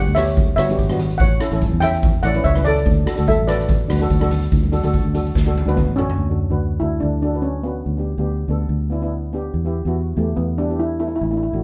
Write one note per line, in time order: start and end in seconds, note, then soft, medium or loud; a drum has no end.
0.07 0.54 D2 medium
0.15 0.42 B3 medium
0.15 0.42 D4 medium
0.15 0.42 G4 medium
0.15 0.55 C#5 medium
0.15 0.55 E5 loud
0.15 cross-stick medium
0.15 closed hi-hat medium
0.15 low conga medium
0.27 closed hi-hat medium
0.37 kick loud
0.37 closed hi-hat medium
0.37 high conga medium
0.37 low conga medium
0.56 0.77 G1 loud
0.56 0.64 B3 medium
0.56 0.65 D4 medium
0.56 0.65 F#4 medium
0.56 0.97 C#5 medium
0.56 0.95 E5 medium
0.56 cross-stick medium
0.56 closed hi-hat medium
0.69 0.81 B3 medium
0.69 0.81 D4 medium
0.69 0.82 G4 medium
0.69 closed hi-hat medium
0.69 high conga medium
0.79 1.17 G#1 medium
0.79 kick medium
0.79 closed hi-hat medium
0.90 1.20 B3 medium
0.90 1.21 D4 medium
0.90 1.21 F#4 medium
0.90 cross-stick medium
0.90 high conga medium
0.99 closed hi-hat medium
0.99 low conga medium
1.11 closed hi-hat medium
1.18 1.39 A1 loud
1.18 1.79 C#5 medium
1.18 1.83 F#5 medium
1.18 kick loud
1.18 closed hi-hat medium
1.40 1.47 C#4 medium
1.40 1.47 E4 medium
1.40 1.48 A4 medium
1.40 cross-stick medium
1.40 closed hi-hat medium
1.51 1.71 A1 medium
1.51 1.70 C#4 medium
1.51 1.70 E4 medium
1.51 1.71 A4 medium
1.51 closed hi-hat medium
1.62 kick medium
1.62 closed hi-hat medium
1.62 high conga medium
1.72 2.19 E2 medium
1.80 2.07 C#4 medium
1.80 2.07 E4 medium
1.80 2.08 A4 medium
1.80 2.21 E5 medium
1.80 2.24 G5 loud
1.80 cross-stick medium
1.80 closed hi-hat medium
1.80 low conga medium
1.93 closed hi-hat medium
2.03 kick loud
2.03 closed hi-hat medium
2.03 high conga medium
2.03 low conga medium
2.23 2.43 A1 medium
2.23 2.30 C#4 medium
2.23 2.31 E4 medium
2.23 2.31 A4 medium
2.23 2.44 D5 medium
2.23 2.45 F#5 medium
2.23 cross-stick medium
2.23 closed hi-hat medium
2.34 2.46 C#4 medium
2.34 2.47 E4 medium
2.34 2.47 B4 medium
2.34 closed hi-hat medium
2.34 high conga medium
2.44 2.83 C#2 medium
2.44 2.65 C#5 medium
2.44 2.66 E5 medium
2.44 kick medium
2.44 closed hi-hat medium
2.55 2.86 C#4 medium
2.55 2.86 E4 medium
2.55 2.87 B4 medium
2.55 cross-stick medium
2.55 high conga medium
2.64 3.24 A4 medium
2.64 3.29 D5 medium
2.64 closed hi-hat medium
2.64 low conga medium
2.76 closed hi-hat medium
2.85 3.05 D2 loud
2.85 kick loud
2.85 closed hi-hat medium
3.06 3.13 D4 medium
3.06 3.13 F#4 medium
3.06 3.13 A4 medium
3.06 cross-stick medium
3.06 closed hi-hat medium
3.16 3.37 D2 medium
3.16 3.35 D4 medium
3.16 3.36 F#4 medium
3.16 3.36 A4 medium
3.16 closed hi-hat medium
3.28 3.47 A4 medium
3.28 3.47 E5 medium
3.28 kick medium
3.28 closed hi-hat medium
3.28 high conga medium
3.39 3.86 A1 medium
3.47 3.73 D4 medium
3.47 3.73 F#4 medium
3.47 3.74 A4 medium
3.47 3.87 B4 medium
3.47 3.86 D5 medium
3.47 cross-stick medium
3.47 closed hi-hat medium
3.47 low conga medium
3.60 closed hi-hat medium
3.69 kick loud
3.69 closed hi-hat medium
3.69 high conga medium
3.69 low conga medium
3.88 4.09 D2 medium
3.88 3.96 D4 medium
3.88 3.96 F#4 medium
3.88 3.97 B4 medium
3.88 cross-stick medium
3.88 closed hi-hat medium
3.88 high conga medium
4.00 4.12 D4 medium
4.00 4.13 F#4 medium
4.00 4.13 A4 medium
4.00 closed hi-hat medium
4.00 high conga medium
4.10 4.49 D2 medium
4.10 kick medium
4.10 closed hi-hat medium
4.20 4.51 D4 medium
4.20 4.52 F#4 medium
4.20 4.52 A4 loud
4.20 cross-stick medium
4.20 high conga medium
4.30 closed hi-hat medium
4.30 low conga medium
4.42 closed hi-hat medium
4.52 4.81 D2 medium
4.52 kick loud
4.52 closed hi-hat medium
4.63 high conga medium
4.72 4.79 D4 medium
4.72 4.79 F#4 medium
4.72 4.79 A4 medium
4.72 closed hi-hat medium
4.72 low conga medium
4.83 5.03 D2 medium
4.83 5.02 D4 medium
4.83 5.03 F#4 medium
4.83 5.03 A4 medium
4.83 closed hi-hat medium
4.83 high conga medium
4.94 kick medium
4.94 closed hi-hat medium
5.04 5.33 D2 medium
5.14 5.33 D4 medium
5.14 5.33 F#4 medium
5.14 5.34 A4 medium
5.14 closed hi-hat medium
5.14 high conga medium
5.14 low conga medium
5.26 closed hi-hat medium
5.35 5.65 D2 medium
5.35 kick loud
5.35 snare medium
5.46 5.58 D4 medium
5.46 5.58 F#4 medium
5.46 5.59 A4 medium
5.56 high tom medium
5.56 high conga medium
5.66 5.86 D2 medium
5.66 5.85 D4 medium
5.66 5.86 F#4 medium
5.66 5.86 B4 medium
5.66 high tom medium
5.76 5.98 B3 medium
5.76 kick medium
5.76 mid tom medium
5.87 6.07 A1 medium
5.96 6.83 C#4 medium
5.96 6.19 D4 medium
5.96 6.19 F#4 medium
5.96 6.20 A4 medium
5.96 floor tom medium
5.96 low conga medium
6.10 floor tom medium
6.17 6.48 D2 medium
6.29 6.42 D4 medium
6.29 6.42 F#4 soft
6.29 6.42 A4 medium
6.50 6.79 D2 medium
6.50 6.69 D4 medium
6.50 6.70 F#4 medium
6.50 6.70 B4 medium
6.80 7.01 D2 medium
6.80 7.07 D4 medium
6.80 7.02 E4 medium
6.80 7.07 F#4 soft
6.80 7.07 A4 medium
7.00 7.82 D2 medium
7.00 7.10 D4 medium
7.22 7.44 D4 medium
7.22 7.30 D4 medium
7.22 7.30 F#4 medium
7.22 7.31 A4 medium
7.34 7.53 D4 medium
7.34 7.53 F#4 medium
7.34 7.54 B4 medium
7.42 7.65 C#4 medium
7.63 8.44 B3 medium
7.63 7.84 D4 medium
7.63 7.84 F#4 medium
7.63 7.85 B4 medium
7.86 8.16 D2 medium
7.97 8.09 B3 medium
7.97 8.10 D4 medium
7.97 8.10 G4 medium
8.18 8.47 D2 medium
8.18 8.37 B3 medium
8.18 8.37 D4 medium
8.18 8.38 G4 medium
8.48 8.68 D2 medium
8.48 8.74 B3 medium
8.48 8.74 D4 medium
8.48 8.75 A4 medium
8.69 9.49 D2 medium
8.90 8.97 B3 medium
8.90 8.98 D4 medium
8.90 8.98 E4 medium
9.02 9.21 B3 medium
9.02 9.21 D4 medium
9.02 9.21 E4 medium
9.33 9.52 B3 medium
9.33 9.52 D4 medium
9.33 9.53 G4 medium
9.54 9.83 E2 medium
9.65 9.77 B3 medium
9.65 9.78 E4 medium
9.65 9.78 G4 medium
9.85 10.14 E2 medium
9.85 10.05 B3 medium
9.85 10.05 E4 medium
9.85 10.05 F#4 medium
10.16 10.36 E2 medium
10.16 10.39 A3 medium
10.16 10.42 B3 medium
10.16 10.42 E4 medium
10.16 10.43 G4 medium
10.36 11.17 E2 medium
10.36 10.59 B3 medium
10.58 10.65 B3 medium
10.58 10.80 D4 medium
10.58 10.66 E4 medium
10.58 10.66 G4 medium
10.69 10.88 B3 medium
10.69 10.89 E4 medium
10.69 10.89 G4 medium
10.79 10.98 E4 medium
11.00 11.19 B3 medium
11.00 11.07 E4 medium
11.00 11.19 E4 medium
11.00 11.20 A4 medium
11.08 11.14 E4 medium
11.15 11.22 E4 medium
11.21 11.51 A1 medium
11.21 11.30 E4 medium
11.31 11.45 A3 medium
11.31 11.45 D4 medium
11.31 11.36 E4 medium
11.31 11.45 E4 medium
11.37 11.42 E4 medium
11.43 11.52 E4 medium
11.53 11.63 A1 medium
11.53 11.63 A3 medium
11.53 11.63 D4 medium
11.53 11.63 F#4 medium